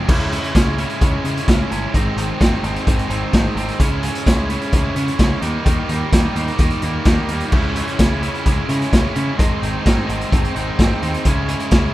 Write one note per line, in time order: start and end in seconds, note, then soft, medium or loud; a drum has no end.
0.08 0.37 C#2 medium
0.08 0.52 C#3 medium
0.08 0.34 G#3 medium
0.08 0.32 C#4 medium
0.08 0.31 E4 loud
0.08 kick loud
0.08 crash loud
0.32 0.54 G#3 medium
0.32 0.54 C#4 medium
0.32 0.54 E4 medium
0.32 closed hi-hat medium
0.44 closed hi-hat soft
0.54 0.84 C#2 medium
0.54 0.79 C#3 medium
0.54 0.79 G#3 medium
0.54 0.78 C#4 medium
0.54 0.77 E4 medium
0.54 kick loud
0.54 snare loud
0.54 closed hi-hat loud
0.78 0.99 C#3 medium
0.78 1.01 G#3 medium
0.78 1.00 C#4 medium
0.78 1.01 E4 medium
0.78 closed hi-hat medium
0.90 closed hi-hat soft
1.01 1.16 C#2 medium
1.01 1.25 C#3 medium
1.01 1.26 G#3 medium
1.01 1.24 C#4 medium
1.01 1.23 E4 medium
1.01 kick loud
1.01 closed hi-hat medium
1.24 1.39 C#3 medium
1.24 1.46 C#3 medium
1.24 1.48 G#3 medium
1.24 1.48 C#4 medium
1.24 1.49 E4 medium
1.24 closed hi-hat medium
1.37 closed hi-hat soft
1.47 1.62 C#2 medium
1.47 1.92 C#3 medium
1.47 1.72 G#3 medium
1.47 1.70 C#4 medium
1.47 1.69 E4 medium
1.47 kick loud
1.47 snare loud
1.47 closed hi-hat medium
1.70 1.85 G1 medium
1.70 1.93 G#3 medium
1.70 1.93 C#4 medium
1.70 1.92 E4 medium
1.70 closed hi-hat medium
1.93 2.09 G#1 medium
1.93 2.40 G#2 medium
1.93 2.39 D#3 loud
1.93 2.18 G#3 medium
1.93 2.16 C4 medium
1.93 2.15 D#4 loud
1.93 kick loud
1.93 closed hi-hat medium
2.17 2.31 G#1 medium
2.17 2.40 G#3 medium
2.17 2.40 C4 medium
2.17 2.41 D#4 medium
2.17 closed hi-hat medium
2.40 2.55 G#1 medium
2.40 2.64 D#3 medium
2.40 2.64 G#3 medium
2.40 2.63 C4 medium
2.40 2.63 D#4 medium
2.40 kick loud
2.40 snare loud
2.40 closed hi-hat medium
2.63 2.78 G#1 medium
2.63 3.10 G#2 medium
2.63 2.85 D#3 medium
2.63 2.86 G#3 medium
2.63 2.86 C4 loud
2.63 2.87 D#4 loud
2.63 closed hi-hat medium
2.76 closed hi-hat soft
2.86 3.01 G#1 medium
2.86 3.10 D#3 medium
2.86 3.09 G#3 medium
2.86 3.09 C4 medium
2.86 3.08 D#4 medium
2.86 kick loud
2.86 closed hi-hat medium
2.99 closed hi-hat soft
3.09 3.24 G#1 medium
3.09 3.57 G#2 medium
3.09 3.32 D#3 medium
3.09 3.33 G#3 medium
3.09 3.34 C4 medium
3.09 3.34 D#4 medium
3.09 closed hi-hat medium
3.33 3.48 G#1 medium
3.33 3.78 D#3 medium
3.33 3.57 G#3 medium
3.33 3.56 C4 medium
3.33 3.55 D#4 medium
3.33 kick medium
3.33 snare loud
3.33 closed hi-hat medium
3.55 3.70 G#1 medium
3.55 3.79 G#3 medium
3.55 3.79 C4 medium
3.55 3.78 D#4 medium
3.55 closed hi-hat medium
3.69 closed hi-hat soft
3.80 4.08 C#2 loud
3.80 4.25 C#3 medium
3.80 4.04 G#3 medium
3.80 4.03 C#4 loud
3.80 4.02 E4 medium
3.80 kick loud
3.80 closed hi-hat loud
4.03 4.26 G#3 medium
4.03 4.26 C#4 medium
4.03 4.28 E4 medium
4.03 closed hi-hat medium
4.15 closed hi-hat medium
4.26 4.55 C#2 medium
4.26 4.50 C#3 medium
4.26 4.50 G#3 medium
4.26 4.49 C#4 medium
4.26 4.49 E4 medium
4.26 kick loud
4.26 snare loud
4.26 closed hi-hat medium
4.50 4.72 C#3 medium
4.50 4.73 G#3 medium
4.50 4.74 C#4 medium
4.50 4.74 E4 medium
4.50 closed hi-hat medium
4.61 closed hi-hat soft
4.73 4.87 C#2 medium
4.73 4.97 C#3 medium
4.73 4.96 G#3 medium
4.73 4.96 C#4 medium
4.73 4.95 E4 loud
4.73 kick medium
4.73 closed hi-hat medium
4.95 5.10 C#3 medium
4.95 5.19 C#3 medium
4.95 5.20 G#3 medium
4.95 5.20 C#4 medium
4.95 5.21 E4 medium
4.95 closed hi-hat medium
5.08 closed hi-hat soft
5.19 5.34 C#2 medium
5.19 5.41 C#3 medium
5.19 5.42 G#3 medium
5.19 5.42 C#4 medium
5.19 5.41 E4 medium
5.19 kick loud
5.19 snare loud
5.19 closed hi-hat medium
5.42 5.56 D#2 medium
5.42 5.64 D#3 medium
5.42 5.64 G3 medium
5.42 5.65 A#3 medium
5.42 5.66 D#4 medium
5.42 closed hi-hat medium
5.65 5.80 D#2 medium
5.65 6.11 D#3 medium
5.65 5.90 G3 medium
5.65 5.89 A#3 loud
5.65 5.88 D#4 loud
5.65 kick loud
5.65 closed hi-hat loud
5.89 6.04 D#2 medium
5.89 6.12 G3 medium
5.89 6.12 A#3 medium
5.89 6.13 D#4 medium
5.89 closed hi-hat medium
6.12 6.27 D#2 medium
6.12 6.35 D#3 medium
6.12 6.35 G3 medium
6.12 6.34 A#3 medium
6.12 6.34 D#4 medium
6.12 kick loud
6.12 snare loud
6.12 closed hi-hat loud
6.35 6.50 D#2 loud
6.35 6.57 D#3 medium
6.35 6.58 G3 medium
6.35 6.59 A#3 medium
6.35 6.59 D#4 loud
6.35 closed hi-hat medium
6.48 closed hi-hat soft
6.58 6.73 D#2 medium
6.58 6.84 D#3 medium
6.58 6.83 G3 medium
6.58 6.82 A#3 medium
6.58 6.81 D#4 medium
6.58 kick loud
6.58 closed hi-hat medium
6.70 closed hi-hat soft
6.82 6.97 D#2 medium
6.82 7.05 D#3 medium
6.82 7.06 G3 medium
6.82 7.07 A#3 medium
6.82 7.07 D#4 medium
6.82 closed hi-hat medium
7.05 7.20 D#2 medium
7.05 7.51 D#3 medium
7.05 7.30 G3 medium
7.05 7.30 A#3 medium
7.05 7.28 D#4 medium
7.05 kick loud
7.05 snare loud
7.05 closed hi-hat medium
7.29 7.43 D#2 medium
7.29 7.52 G3 medium
7.29 7.52 A#3 medium
7.29 7.51 D#4 medium
7.29 closed hi-hat medium
7.40 closed hi-hat soft
7.52 7.81 C#2 medium
7.52 7.98 C#3 medium
7.52 7.78 G#3 medium
7.52 7.76 C#4 medium
7.52 7.75 E4 loud
7.52 kick loud
7.52 crash medium
7.76 8.00 G#3 medium
7.76 8.00 C#4 medium
7.76 8.01 E4 medium
7.76 closed hi-hat medium
7.88 closed hi-hat soft
7.99 8.28 C#2 medium
7.99 8.23 C#3 medium
7.99 8.23 G#3 medium
7.99 8.22 C#4 medium
7.99 8.21 E4 medium
7.99 kick loud
7.99 snare loud
7.99 closed hi-hat loud
8.22 8.45 C#3 medium
8.22 8.47 G#3 medium
8.22 8.46 C#4 medium
8.22 8.47 E4 medium
8.22 closed hi-hat medium
8.35 closed hi-hat soft
8.46 8.60 C#2 medium
8.46 8.69 C#3 medium
8.46 8.69 G#3 medium
8.46 8.68 C#4 medium
8.46 8.67 E4 medium
8.46 kick loud
8.46 closed hi-hat medium
8.68 8.83 C#3 medium
8.68 8.91 C#3 medium
8.68 8.92 G#3 medium
8.68 8.91 C#4 medium
8.68 8.92 E4 medium
8.68 closed hi-hat medium
8.81 closed hi-hat soft
8.92 9.07 C#2 medium
8.92 9.37 C#3 medium
8.92 9.16 G#3 medium
8.92 9.14 C#4 medium
8.92 9.13 E4 medium
8.92 kick loud
8.92 snare loud
8.92 closed hi-hat medium
9.15 9.30 C#3 medium
9.15 9.38 G#3 soft
9.15 9.37 C#4 medium
9.15 9.37 E4 medium
9.15 closed hi-hat medium
9.37 9.53 G#1 medium
9.37 9.84 G#2 medium
9.37 9.83 D#3 loud
9.37 9.62 G#3 loud
9.37 9.61 C4 loud
9.37 9.59 D#4 loud
9.37 kick loud
9.37 closed hi-hat loud
9.60 9.76 G#1 medium
9.60 9.85 G#3 medium
9.60 9.85 C4 medium
9.60 9.85 D#4 medium
9.60 closed hi-hat medium
9.84 10.00 G#1 medium
9.84 10.07 D#3 medium
9.84 10.06 G#3 medium
9.84 10.06 C4 medium
9.84 10.05 D#4 medium
9.84 kick loud
9.84 snare loud
9.84 closed hi-hat medium
10.06 10.23 G#1 loud
10.06 10.55 G#2 medium
10.06 10.29 D#3 medium
10.06 10.30 G#3 medium
10.06 10.31 C4 loud
10.06 10.31 D#4 loud
10.06 closed hi-hat medium
10.21 closed hi-hat soft
10.31 10.46 G#1 medium
10.31 10.56 D#3 medium
10.31 10.55 G#3 medium
10.31 10.55 C4 medium
10.31 10.54 D#4 medium
10.31 kick loud
10.31 closed hi-hat medium
10.45 closed hi-hat soft
10.55 10.69 G#1 medium
10.55 11.03 G#2 medium
10.55 10.77 D#3 medium
10.55 10.78 G#3 medium
10.55 10.79 C4 medium
10.55 10.79 D#4 medium
10.55 closed hi-hat medium
10.78 10.93 G#1 medium
10.78 11.23 D#3 medium
10.78 11.02 G#3 medium
10.78 11.02 C4 medium
10.78 11.01 D#4 medium
10.78 kick loud
10.78 snare loud
10.78 closed hi-hat medium
11.02 11.16 D#2 medium
11.02 11.24 G#3 medium
11.02 11.24 C4 medium
11.02 11.23 D#4 medium
11.02 closed hi-hat medium
11.14 closed hi-hat soft
11.25 11.54 C#2 medium
11.25 11.70 C#3 loud
11.25 11.49 G#3 loud
11.25 11.48 C#4 medium
11.25 11.47 E4 medium
11.25 kick loud
11.25 closed hi-hat loud
11.48 11.70 G#3 medium
11.48 11.71 C#4 medium
11.48 11.72 E4 medium
11.48 closed hi-hat medium
11.60 closed hi-hat soft
11.71 11.94 C#2 medium
11.71 11.94 C#3 medium
11.71 11.94 G#3 medium
11.71 11.93 C#4 medium
11.71 11.93 E4 medium
11.71 kick loud
11.71 snare loud
11.71 closed hi-hat loud